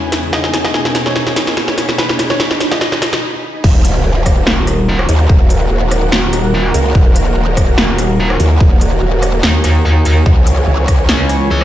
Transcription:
0.00 0.30 E2 medium
0.00 0.29 C#3 medium
0.00 0.30 G#3 medium
0.00 0.30 E4 medium
0.00 0.33 E4 medium
0.00 0.30 G#4 medium
0.00 1.66 G#4 medium
0.00 0.25 B4 loud
0.00 1.49 C#5 medium
0.00 3.23 G#5 medium
0.00 riser medium
0.12 snare medium
0.12 closed hi-hat medium
0.33 3.20 B2 medium
0.33 3.20 A#3 medium
0.33 3.23 D#4 medium
0.33 3.20 D#4 medium
0.33 3.20 G#4 medium
0.33 0.42 D#5 loud
0.33 snare medium
0.44 0.52 G#4 medium
0.44 3.23 B5 medium
0.44 snare medium
0.54 0.63 G#4 medium
0.54 snare loud
0.54 closed hi-hat medium
0.65 0.73 D#5 loud
0.65 snare medium
0.74 0.84 G#4 medium
0.74 snare medium
0.85 0.94 G#4 medium
0.85 snare medium
0.95 1.05 G#4 medium
0.95 snare loud
0.95 closed hi-hat medium
1.06 1.91 C#5 medium
1.06 snare medium
1.16 snare loud
1.27 snare medium
1.36 snare loud
1.36 closed hi-hat medium
1.47 snare medium
1.57 snare loud
1.68 snare medium
1.78 snare loud
1.78 closed hi-hat medium
1.89 snare medium
1.98 2.08 B4 loud
1.98 snare loud
2.09 2.18 D#4 medium
2.09 snare medium
2.19 2.29 D#4 medium
2.19 snare loud
2.19 closed hi-hat medium
2.30 2.38 C#5 loud
2.30 snare medium
2.40 2.49 D#4 medium
2.40 snare loud
2.51 2.59 D#4 medium
2.51 snare medium
2.60 2.70 D#4 medium
2.60 snare loud
2.60 closed hi-hat medium
2.71 3.23 D#5 medium
2.71 snare loud
2.81 snare loud
2.92 snare medium
3.02 snare loud
3.02 closed hi-hat medium
3.13 snare loud
3.64 4.04 D#1 loud
3.64 10.22 D#3 medium
3.64 10.22 A#3 medium
3.64 10.22 F#4 medium
3.64 10.22 A#4 medium
3.64 kick loud
3.64 crash loud
3.64 impact medium
3.81 10.85 F#4 medium
3.81 10.94 A#4 medium
3.81 closed hi-hat medium
4.05 4.45 D#1 loud
4.26 kick medium
4.26 cross-stick medium
4.26 closed hi-hat medium
4.46 5.07 D#1 loud
4.46 8.02 F#5 medium
4.46 snare loud
4.67 cross-stick medium
4.67 closed hi-hat medium
4.99 cross-stick medium
5.09 5.28 D#2 loud
5.09 closed hi-hat medium
5.29 5.69 D#1 loud
5.29 kick loud
5.50 closed hi-hat medium
5.71 6.11 D#1 loud
5.91 cross-stick medium
5.91 closed hi-hat medium
6.12 6.73 D#1 medium
6.12 snare loud
6.33 cross-stick medium
6.33 closed hi-hat medium
6.74 6.93 C#2 loud
6.74 closed hi-hat medium
6.95 7.35 D#1 loud
6.95 kick loud
7.16 closed hi-hat medium
7.36 7.76 D#1 loud
7.57 kick medium
7.57 cross-stick medium
7.57 closed hi-hat medium
7.78 8.38 D#1 medium
7.78 snare loud
7.90 11.64 G#5 medium
7.98 cross-stick medium
7.98 closed hi-hat medium
8.30 cross-stick medium
8.40 8.59 D#2 loud
8.40 closed hi-hat medium
8.60 9.00 D#1 medium
8.60 kick loud
8.81 closed hi-hat medium
9.02 9.42 D#1 loud
9.23 cross-stick medium
9.23 closed hi-hat medium
9.43 10.24 D#2 medium
9.43 snare loud
9.64 cross-stick medium
9.64 closed hi-hat medium
10.05 closed hi-hat medium
10.26 10.66 C#2 loud
10.26 11.64 E3 medium
10.26 11.64 C#4 medium
10.26 11.64 E4 medium
10.26 11.64 G#4 medium
10.26 11.64 C#5 medium
10.26 kick loud
10.33 11.64 G#4 medium
10.47 closed hi-hat medium
10.62 11.64 C#5 medium
10.67 11.07 C#2 loud
10.88 kick medium
10.88 cross-stick medium
10.88 closed hi-hat medium
11.09 11.64 C#2 medium
11.09 snare loud
11.29 cross-stick medium
11.29 closed hi-hat medium

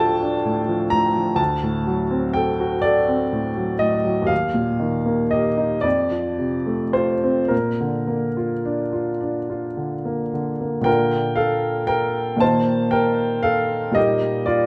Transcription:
0.00 1.34 D2 soft
0.00 0.45 A2 soft
0.00 0.68 F3 soft
0.00 0.22 D4 soft
0.00 0.12 F4 soft
0.00 1.41 A4 soft
0.00 1.40 F5 medium
0.00 1.41 G5 medium
0.00 0.90 A5 medium
0.22 0.59 D4 soft
0.45 0.83 A2 soft
0.68 1.06 F3 soft
0.90 1.29 A2 soft
0.90 1.38 A#5 medium
1.16 1.39 F3 soft
1.36 4.25 D2 soft
1.36 2.33 A5 medium
1.63 2.01 A2 soft
1.87 2.25 F#3 soft
2.11 2.49 C4 soft
2.33 2.74 A4 soft
2.33 2.83 G5 medium
2.60 2.99 F#4 soft
2.82 3.23 A4 soft
2.82 3.81 D5 medium
3.08 3.47 C4 soft
3.33 3.72 A2 soft
3.57 3.96 F#3 soft
3.79 4.20 A2 soft
3.79 4.29 D#5 medium
4.05 4.30 F#3 soft
4.22 5.77 D#2 soft
4.27 5.30 F5 medium
4.54 4.95 A#2 soft
4.80 5.21 D#3 soft
5.06 5.48 A#3 soft
5.31 5.75 G4 soft
5.31 5.84 D#5 medium
5.57 5.84 D#4 soft
5.81 7.47 F2 soft
5.81 6.93 D5 medium
6.11 6.55 F3 soft
6.38 6.83 C3 soft
6.67 7.12 A3 soft
6.93 7.40 F4 soft
6.93 7.51 C5 medium
7.24 7.52 C4 soft
7.48 10.80 A#2 soft
7.48 10.31 A#4 soft
7.81 8.26 D3 soft
8.07 8.53 A#3 soft
8.37 8.82 F4 soft
8.65 9.10 D4 soft
8.93 9.37 F4 soft
9.21 9.65 D4 soft
9.50 9.94 F4 soft
9.77 10.22 D3 soft
10.05 10.50 A#3 soft
10.34 10.77 D3 soft
10.61 10.82 A#3 soft
10.81 12.34 A#2 soft
10.81 12.35 D3 soft
10.81 12.36 A#3 soft
10.81 11.37 G5 medium
10.86 12.37 F4 soft
10.86 11.34 A#4 medium
11.36 11.85 A4 soft
11.36 11.88 F5 medium
11.87 12.37 A#4 medium
11.87 12.40 G5 medium
12.36 13.90 A#2 soft
12.36 13.91 D#3 soft
12.36 13.91 A#3 soft
12.40 13.92 D#4 soft
12.40 12.89 C5 medium
12.40 12.92 A5 medium
12.91 13.41 A#4 medium
12.91 13.44 G5 medium
13.43 13.92 A4 soft
13.43 13.95 F5 medium
13.91 14.66 A#2 soft
13.91 14.66 G3 soft
13.91 14.66 A#3 soft
13.91 14.66 D#4 soft
13.91 14.46 D#5 medium
13.96 14.43 G4 soft
14.46 14.66 F4 medium
14.46 14.66 D5 medium

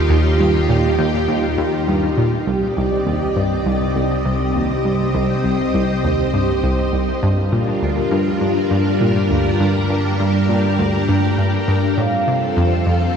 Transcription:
0.00 2.44 D#2 medium
0.00 2.43 D#4 medium
0.00 2.43 F4 medium
0.00 2.43 G4 medium
0.10 0.38 D#2 loud
0.40 0.58 G2 medium
0.69 0.88 A#2 medium
0.99 1.27 D#2 loud
1.28 1.47 D#2 medium
1.58 1.86 D#2 loud
1.88 2.07 G2 medium
2.17 2.37 A#2 medium
2.47 2.66 C2 medium
2.47 7.20 C2 medium
2.47 7.19 C4 medium
2.47 7.19 G4 medium
2.47 4.83 D5 medium
2.47 7.19 D#5 medium
2.77 3.05 C2 loud
3.06 3.26 D#2 medium
3.36 3.55 G2 medium
3.66 3.94 C2 loud
3.96 4.15 C2 medium
4.25 4.54 C2 medium
4.55 4.74 D#2 medium
4.85 5.04 G2 medium
4.85 7.20 C5 medium
5.15 5.43 C2 medium
5.44 5.63 C2 medium
5.74 6.02 C2 medium
6.04 6.23 D#2 medium
6.34 6.53 G2 medium
6.63 6.92 C2 medium
6.93 7.12 C2 medium
7.23 11.95 G2 medium
7.23 7.51 G2 loud
7.23 11.94 G3 medium
7.23 11.94 D4 medium
7.23 9.58 F4 medium
7.23 11.94 A#4 medium
7.52 7.71 A#2 medium
7.82 8.01 D2 medium
8.12 8.40 G2 medium
8.41 8.60 G2 medium
8.71 8.99 G2 loud
9.01 9.20 A#2 medium
9.30 9.49 D2 medium
9.60 9.88 G2 loud
9.60 11.96 G4 medium
9.90 10.09 G2 medium
10.20 10.48 G2 loud
10.49 10.68 A#2 medium
10.79 10.98 D2 medium
11.09 11.37 G2 medium
11.38 11.57 G2 medium
11.68 11.96 G2 medium
11.98 13.17 F2 medium
11.98 12.17 A2 medium
11.98 13.17 C4 medium
11.98 13.17 F4 medium
11.98 13.17 A4 medium
11.98 13.17 F5 loud
12.27 12.46 C3 medium
12.57 12.85 F2 medium
12.87 13.06 F2 medium

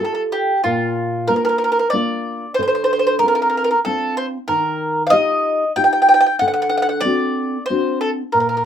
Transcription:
0.00 0.51 F4 soft
0.00 0.52 G4 soft
0.00 0.52 A4 soft
0.05 0.13 A4 medium
0.15 0.22 A4 soft
0.32 0.62 G4 medium
0.64 1.27 A#2 medium
0.64 1.31 F4 medium
1.28 1.80 A#3 soft
1.28 1.81 D4 soft
1.28 1.81 F4 soft
1.28 1.35 A#4 medium
1.36 1.44 A#4 medium
1.45 1.48 A#4 medium
1.49 1.57 A#4 medium
1.58 1.63 A#4 medium
1.64 1.71 A#4 medium
1.72 1.78 A#4 medium
1.79 1.87 A#4 medium
1.90 2.44 A#3 soft
1.90 2.45 D4 soft
1.90 2.54 D5 medium
1.95 2.45 F4 soft
2.54 2.61 C5 medium
2.59 3.20 D3 medium
2.59 2.66 C5 medium
2.68 2.74 C5 medium
2.75 2.83 C5 medium
2.84 2.92 C5 medium
2.93 2.98 C5 medium
2.99 3.05 C5 medium
3.07 3.15 C5 medium
3.19 3.73 C4 soft
3.19 3.73 D4 soft
3.19 3.27 A#4 medium
3.23 3.73 F4 soft
3.28 3.34 A#4 medium
3.35 3.41 A#4 medium
3.42 3.48 A#4 medium
3.50 3.56 A#4 medium
3.57 3.63 A#4 medium
3.64 3.70 A#4 medium
3.71 3.79 A#4 medium
3.85 4.37 C4 soft
3.85 4.37 D4 soft
3.85 4.37 F4 medium
3.85 4.16 A4 medium
4.17 4.25 C5 medium
4.48 5.11 D#3 medium
4.48 5.02 A#4 medium
5.07 5.72 D#5 loud
5.07 5.13 F5 medium
5.11 5.63 D#4 soft
5.11 5.64 F4 soft
5.11 5.64 G4 medium
5.76 6.28 D#4 medium
5.76 6.28 F4 soft
5.76 6.28 G4 soft
5.76 5.83 G5 medium
5.84 5.91 G5 medium
5.93 6.01 G5 medium
6.02 6.07 G5 medium
6.09 6.13 G5 medium
6.14 6.19 G5 medium
6.21 6.25 G5 medium
6.26 6.35 G5 medium
6.39 7.03 D3 medium
6.39 6.47 F#5 medium
6.48 6.52 F#5 medium
6.54 6.61 F#5 medium
6.62 6.68 F#5 medium
6.69 6.76 F#5 medium
6.77 6.81 F#5 medium
6.82 6.88 F#5 medium
6.89 6.99 F#5 medium
7.00 7.63 D5 loud
7.05 7.56 C4 soft
7.05 7.57 D4 soft
7.05 7.57 F#4 soft
7.66 7.99 C5 medium
7.70 8.21 C4 soft
7.70 8.22 D4 soft
7.70 8.22 F#4 medium
8.01 8.09 A4 medium
8.32 8.65 A#2 medium
8.32 8.39 A#4 medium
8.40 8.48 A#4 soft
8.49 8.56 A#4 soft
8.57 8.63 A#4 soft

